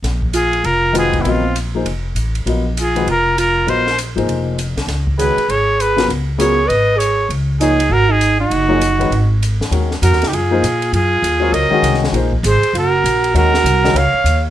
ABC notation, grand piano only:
X:1
M:4/4
L:1/8
Q:"Swing" 1/4=198
K:Bbphr
V:1 name="Grand piano"
z6 [E,A,=CG_c]2 | [G,CFBe] z2 [F,B,EA=c] z4 | [G,CFBe] z2 [E,A,=CG_c] z4 | [G,CFBe] z2 [F,B,EA=c]3 z2 |
z2 [E,A,DGc] z4 [D,G,CFB] | z2 [D,G,CFB] z4 z | z2 [F,B,EAd] z4 z | z [F,B,EAd] z [E,A,DGc] z4 |
[K:Ebdor] [E,A,DGB] z4 [F,B,EAc] z2 | z3 [G,CFBd]2 [E,A,DGA]3 | [F,B,EAc] z6 z | [E,A,DGB] z2 [E,A,DGB] z4 |]